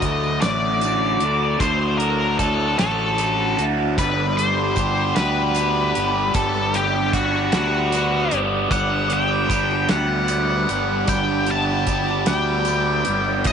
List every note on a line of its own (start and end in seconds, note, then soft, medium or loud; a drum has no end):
0.00 0.38 D2 medium
0.00 1.60 D2 medium
0.00 0.81 A2 medium
0.00 0.44 D3 medium
0.00 0.41 D#5 medium
0.00 3.95 F#5 medium
0.00 3.95 A5 medium
0.00 3.95 D6 medium
0.00 kick medium
0.00 closed hi-hat medium
0.05 0.43 A3 medium
0.05 0.42 F#4 medium
0.24 tambourine soft
0.41 1.17 A1 medium
0.41 0.81 D3 medium
0.41 0.82 A3 medium
0.41 0.83 F#4 medium
0.41 1.64 D5 medium
0.41 snare loud
0.41 closed hi-hat medium
0.81 1.60 A2 medium
0.81 1.24 D3 medium
0.81 1.22 A3 medium
0.81 1.22 F#4 medium
0.81 closed hi-hat medium
0.81 tambourine medium
1.20 1.58 D2 medium
1.20 1.61 A3 medium
1.20 1.62 F#4 medium
1.20 closed hi-hat medium
1.25 1.61 D3 medium
1.60 2.75 D2 loud
1.60 2.40 D2 medium
1.60 2.39 A2 medium
1.60 2.02 D3 medium
1.60 2.01 A3 medium
1.60 1.99 F#4 medium
1.60 1.97 C5 medium
1.60 kick loud
1.60 closed hi-hat medium
1.60 tambourine medium
1.98 2.41 A3 medium
1.98 2.41 F#4 medium
1.98 2.39 A#4 medium
1.98 closed hi-hat medium
2.03 2.39 D3 medium
2.39 3.17 A2 medium
2.39 2.81 D3 medium
2.39 2.79 A3 medium
2.39 2.78 F#4 medium
2.39 2.78 A4 medium
2.39 kick medium
2.39 closed hi-hat medium
2.39 tambourine medium
2.60 tambourine soft
2.79 3.55 A1 medium
2.79 3.18 D3 medium
2.79 3.19 A3 medium
2.79 3.19 F#4 medium
2.79 3.64 A4 medium
2.79 snare loud
2.79 closed hi-hat medium
3.18 3.95 A2 medium
3.18 3.59 D3 medium
3.18 3.57 A3 medium
3.18 3.56 F#4 medium
3.18 closed hi-hat medium
3.18 tambourine medium
3.57 3.99 D2 medium
3.57 3.96 D3 medium
3.57 3.95 A3 medium
3.57 3.95 F#4 medium
3.57 closed hi-hat medium
3.97 5.12 G1 loud
3.97 6.34 G2 medium
3.97 4.76 D3 medium
3.97 4.39 G3 loud
3.97 4.39 B3 medium
3.97 4.39 D4 medium
3.97 4.37 G4 medium
3.97 4.37 B4 medium
3.97 13.44 B5 medium
3.97 kick medium
3.97 closed hi-hat medium
3.97 tambourine medium
4.01 13.44 D5 medium
4.01 13.44 D6 medium
4.37 4.77 G3 medium
4.37 4.78 B3 medium
4.37 4.79 D4 medium
4.37 4.79 G4 medium
4.37 5.15 C5 medium
4.37 closed hi-hat medium
4.37 tambourine soft
4.76 5.21 G3 medium
4.76 5.20 B3 medium
4.76 5.19 D4 medium
4.76 5.18 G4 medium
4.76 kick medium
4.76 closed hi-hat medium
4.76 tambourine medium
4.97 tambourine soft
5.16 5.92 D2 medium
5.16 5.58 D4 medium
5.16 5.58 G4 medium
5.16 6.35 B4 medium
5.16 snare medium
5.16 closed hi-hat medium
5.20 5.56 G3 medium
5.20 5.57 B3 medium
5.55 5.99 G3 medium
5.55 5.98 B3 medium
5.55 5.98 D4 medium
5.55 closed hi-hat medium
5.55 tambourine medium
5.59 5.96 G4 medium
5.95 6.32 G1 medium
5.95 6.36 B3 medium
5.95 6.36 D4 medium
5.95 6.36 G4 medium
5.95 closed hi-hat medium
5.99 6.35 G3 medium
6.34 7.49 G1 medium
6.34 8.69 G2 medium
6.34 7.14 D3 medium
6.34 6.77 G3 medium
6.34 6.76 B3 medium
6.34 6.75 D4 medium
6.34 6.74 G4 medium
6.34 6.76 A4 medium
6.34 kick loud
6.34 closed hi-hat medium
6.34 tambourine medium
6.54 tambourine soft
6.74 7.13 G3 medium
6.74 7.14 B3 medium
6.74 7.15 D4 medium
6.74 7.15 G4 medium
6.74 7.13 G4 medium
6.74 closed hi-hat medium
7.13 7.55 G3 medium
7.13 7.54 B3 medium
7.13 7.53 D4 medium
7.13 7.52 F#4 medium
7.13 7.52 G4 medium
7.13 kick medium
7.13 closed hi-hat medium
7.13 tambourine medium
7.35 tambourine soft
7.52 8.28 D2 medium
7.52 7.92 G3 medium
7.52 7.93 B3 medium
7.52 7.93 D4 medium
7.52 8.38 F#4 medium
7.52 7.95 G4 medium
7.52 snare loud
7.52 closed hi-hat medium
7.52 tambourine soft
7.74 tambourine soft
7.92 8.33 G3 medium
7.92 8.33 B3 medium
7.92 8.31 D4 medium
7.92 8.31 G4 medium
7.92 closed hi-hat medium
7.92 tambourine medium
8.31 8.69 G1 medium
8.31 8.70 G3 medium
8.31 8.70 B3 medium
8.31 8.71 D4 medium
8.31 8.72 G4 medium
8.31 closed hi-hat medium
8.69 9.86 G1 loud
8.69 11.07 G2 medium
8.69 9.50 D3 medium
8.69 9.10 G3 medium
8.69 9.09 B3 medium
8.69 9.08 D4 medium
8.69 9.08 G4 loud
8.69 9.12 F#5 loud
8.69 kick loud
8.69 closed hi-hat medium
8.69 tambourine medium
9.08 9.47 G3 medium
9.08 9.48 B3 medium
9.08 9.48 D4 medium
9.08 9.49 G4 medium
9.08 closed hi-hat medium
9.08 tambourine soft
9.13 9.90 G5 loud
9.47 9.89 G3 medium
9.47 9.89 B3 medium
9.47 9.87 D4 medium
9.47 9.87 G4 medium
9.47 kick medium
9.47 closed hi-hat medium
9.47 tambourine medium
9.71 tambourine soft
9.89 10.65 D2 medium
9.89 10.26 G3 medium
9.89 10.27 B3 medium
9.89 10.27 D4 medium
9.89 10.28 G4 medium
9.89 11.09 F#5 medium
9.89 snare loud
9.89 closed hi-hat medium
10.27 10.68 G3 medium
10.27 10.67 B3 medium
10.27 10.67 D4 medium
10.27 10.65 G4 medium
10.27 closed hi-hat medium
10.27 tambourine loud
10.67 11.06 G1 medium
10.67 11.06 G3 medium
10.67 11.08 B3 medium
10.67 11.08 D4 medium
10.67 11.08 G4 medium
10.67 closed hi-hat medium
11.07 12.23 G1 medium
11.07 11.87 G2 medium
11.07 11.87 D3 medium
11.07 11.48 G3 medium
11.07 11.47 B3 medium
11.07 11.47 D4 medium
11.07 11.46 G4 medium
11.07 11.50 G5 loud
11.07 kick loud
11.07 closed hi-hat medium
11.07 tambourine loud
11.46 11.85 G3 medium
11.46 11.86 B3 medium
11.46 11.87 D4 medium
11.46 11.88 G4 medium
11.46 closed hi-hat medium
11.46 tambourine soft
11.51 12.27 A5 medium
11.86 12.28 G3 medium
11.86 12.27 B3 medium
11.86 12.27 D4 medium
11.86 12.26 G4 medium
11.86 kick medium
11.86 closed hi-hat medium
11.86 tambourine loud
12.08 tambourine soft
12.26 13.02 D2 medium
12.26 12.66 G3 medium
12.26 12.67 B3 medium
12.26 12.68 D4 medium
12.26 12.68 G4 medium
12.26 13.50 G5 loud
12.26 snare medium
12.26 closed hi-hat medium
12.65 13.08 G3 medium
12.65 13.07 B3 medium
12.65 closed hi-hat medium
12.65 tambourine medium
12.69 13.06 D4 medium
12.69 13.05 G4 medium
13.05 13.46 G1 medium
13.05 13.44 B3 medium
13.05 13.44 D4 medium
13.05 13.44 G4 medium
13.05 closed hi-hat medium
13.09 13.45 G3 medium
13.44 13.53 A1 loud
13.44 13.53 A2 medium
13.44 13.53 E3 medium
13.44 13.53 A3 medium
13.44 13.53 C#4 medium
13.44 13.53 E4 loud
13.44 13.53 A4 medium
13.44 13.53 D#5 loud
13.44 kick loud
13.44 closed hi-hat medium
13.44 tambourine medium